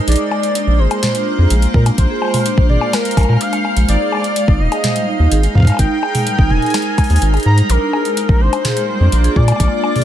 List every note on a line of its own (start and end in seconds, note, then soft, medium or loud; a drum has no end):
0.00 1.20 A#4 medium
0.00 10.04 C5 medium
0.07 0.16 A#1 loud
0.07 5.39 A#3 medium
0.07 0.13 G#4 medium
0.07 0.81 D5 loud
0.07 closed hi-hat medium
0.12 closed hi-hat medium
0.16 0.28 G#3 medium
0.16 closed hi-hat soft
0.20 4.77 F4 medium
0.31 high bongo medium
0.43 0.52 G#3 medium
0.43 closed hi-hat soft
0.55 0.60 D4 medium
0.55 closed hi-hat medium
0.67 0.80 A#1 medium
0.79 0.87 G#1 loud
0.79 0.88 G#4 medium
0.79 1.50 C5 loud
0.91 1.00 G#3 medium
0.91 closed hi-hat soft
0.91 high bongo medium
1.03 1.14 G#3 medium
1.03 snare loud
1.03 closed hi-hat medium
1.03 mid tom medium
1.15 1.24 D4 medium
1.15 closed hi-hat medium
1.27 1.38 D4 medium
1.38 1.47 F2 medium
1.38 1.44 G#4 medium
1.50 1.66 A#1 medium
1.50 1.59 G#3 medium
1.50 closed hi-hat medium
1.55 4.92 F5 medium
1.62 closed hi-hat soft
1.74 1.90 A#2 medium
1.74 1.83 G#3 medium
1.74 1.85 A#4 medium
1.74 kick loud
1.86 1.91 D4 medium
1.86 closed hi-hat medium
1.86 high bongo medium
1.98 2.06 A#1 loud
1.98 2.66 C5 loud
1.98 kick medium
1.98 closed hi-hat medium
2.10 2.19 G#4 medium
2.22 2.31 G#3 medium
2.22 high bongo soft
2.25 high bongo soft
2.28 high bongo soft
2.34 2.45 G#3 medium
2.34 mid tom medium
2.34 open hi-hat medium
2.34 high bongo soft
2.37 high bongo soft
2.40 high bongo soft
2.46 2.54 D4 medium
2.46 closed hi-hat medium
2.58 2.71 A#1 medium
2.58 2.69 D4 medium
2.58 kick loud
2.69 2.77 G#1 loud
2.69 2.75 G#4 medium
2.69 2.95 D5 loud
2.69 mid tom medium
2.81 2.90 G#3 medium
2.81 high bongo medium
2.93 3.42 A#4 loud
2.93 snare loud
2.93 closed hi-hat medium
2.93 high bongo medium
3.05 3.14 G#3 medium
3.05 closed hi-hat medium
3.11 closed hi-hat soft
3.17 3.25 A#1 medium
3.17 3.28 G#3 loud
3.17 kick loud
3.17 closed hi-hat soft
3.17 open hi-hat medium
3.17 high bongo medium
3.21 closed hi-hat soft
3.21 high bongo soft
3.25 3.37 A#2 medium
3.25 high bongo soft
3.29 3.40 G#3 loud
3.29 high bongo soft
3.33 high bongo soft
3.37 3.50 D4 medium
3.37 closed hi-hat medium
3.37 high bongo soft
3.41 3.77 F5 loud
3.53 3.62 G#3 loud
3.53 closed hi-hat soft
3.53 high bongo soft
3.65 3.73 G#3 medium
3.65 high bongo soft
3.77 3.85 A#1 medium
3.77 3.85 G#3 loud
3.77 closed hi-hat medium
3.88 3.96 G#1 loud
3.88 4.00 D#4 medium
3.88 4.62 D5 loud
3.88 closed hi-hat medium
4.00 4.06 G#4 medium
4.12 4.21 G#3 medium
4.12 high bongo soft
4.15 high bongo soft
4.17 high bongo soft
4.19 high bongo soft
4.22 closed hi-hat soft
4.22 high bongo soft
4.36 4.45 G#3 medium
4.36 closed hi-hat medium
4.48 4.61 G#1 medium
4.48 4.53 D#4 medium
4.48 7.69 D#4 medium
4.48 kick loud
4.60 4.68 D#1 loud
4.60 5.31 D#5 loud
4.72 4.81 G#4 medium
4.72 closed hi-hat soft
4.72 high bongo medium
4.84 4.93 G#3 medium
4.84 snare loud
4.84 closed hi-hat medium
4.84 mid tom medium
4.96 5.04 G3 medium
4.96 9.20 A#4 medium
4.96 closed hi-hat medium
5.07 5.16 D#4 medium
5.19 5.27 D#2 medium
5.19 5.31 D#4 medium
5.31 5.47 G#1 medium
5.31 5.37 G#4 medium
5.31 closed hi-hat medium
5.43 5.52 G#3 medium
5.43 closed hi-hat soft
5.55 5.71 G#2 medium
5.55 5.77 F5 medium
5.55 kick medium
5.58 kick medium
5.60 kick medium
5.62 kick medium
5.65 5.76 G#3 medium
5.65 kick loud
5.65 closed hi-hat medium
5.65 high bongo soft
5.70 high bongo soft
5.72 high bongo soft
5.74 high bongo soft
5.77 5.87 G#1 loud
5.77 5.84 D#4 medium
5.77 6.52 G5 loud
5.77 kick medium
5.77 closed hi-hat medium
5.77 high bongo soft
6.03 6.12 G#4 medium
6.03 high bongo medium
6.15 6.23 G#3 medium
6.15 mid tom medium
6.15 open hi-hat medium
6.27 6.35 G3 medium
6.27 closed hi-hat medium
6.39 6.52 G#1 medium
6.39 6.47 D#4 medium
6.39 kick loud
6.50 6.58 D#1 loud
6.50 6.62 D#4 medium
6.50 7.22 G#5 loud
6.50 mid tom medium
6.62 6.68 G#4 medium
6.62 closed hi-hat soft
6.66 closed hi-hat soft
6.70 snare loud
6.70 closed hi-hat soft
6.74 6.83 G#3 medium
6.74 closed hi-hat medium
6.74 high bongo medium
6.78 closed hi-hat soft
6.82 closed hi-hat soft
6.98 7.07 G#3 medium
6.98 kick loud
6.98 closed hi-hat soft
6.98 open hi-hat soft
6.98 high bongo medium
7.04 open hi-hat soft
7.10 7.18 D#2 medium
7.10 7.15 D#4 medium
7.10 open hi-hat soft
7.16 open hi-hat soft
7.22 7.38 G#1 loud
7.22 closed hi-hat medium
7.34 7.43 G#4 medium
7.34 closed hi-hat soft
7.34 high bongo soft
7.37 closed hi-hat soft
7.40 closed hi-hat soft
7.43 7.62 G#2 medium
7.43 7.55 G#3 medium
7.43 7.71 A#5 loud
7.43 closed hi-hat soft
7.58 7.66 G3 medium
7.58 closed hi-hat medium
7.69 7.77 A#1 loud
7.69 10.04 A#3 medium
7.69 7.78 D4 medium
7.69 8.42 A#4 loud
7.69 closed hi-hat medium
7.81 7.93 D4 medium
7.93 10.04 F4 medium
7.93 7.99 G#4 medium
7.93 high bongo medium
8.05 8.14 G#3 medium
8.05 closed hi-hat soft
8.17 closed hi-hat medium
8.29 8.42 A#1 medium
8.29 8.38 G#3 medium
8.29 kick loud
8.41 8.49 G#1 loud
8.41 8.46 D4 medium
8.41 9.38 C5 loud
8.48 10.04 D5 medium
8.53 closed hi-hat soft
8.53 high bongo medium
8.65 8.73 G#4 medium
8.65 snare loud
8.65 closed hi-hat medium
8.65 mid tom medium
8.77 8.85 G#3 medium
8.77 closed hi-hat medium
8.88 8.97 G3 medium
9.00 9.08 F2 medium
9.00 9.09 D4 medium
9.12 9.28 A#1 loud
9.12 9.24 D4 medium
9.12 closed hi-hat medium
9.24 9.30 G#4 medium
9.24 closed hi-hat soft
9.36 9.52 A#2 medium
9.36 9.45 G#3 medium
9.36 10.04 D5 loud
9.36 kick loud
9.48 closed hi-hat medium
9.48 high bongo medium
9.52 high bongo soft
9.56 9.68 A#1 loud
9.56 9.69 G#3 medium
9.56 kick medium
9.56 closed hi-hat medium
9.56 high bongo soft
9.60 high bongo soft
9.64 high bongo soft
9.68 9.77 D4 medium
9.68 high bongo soft
9.84 high bongo medium
9.96 10.04 G#4 medium
9.96 mid tom medium
9.96 open hi-hat soft
10.00 mid tom medium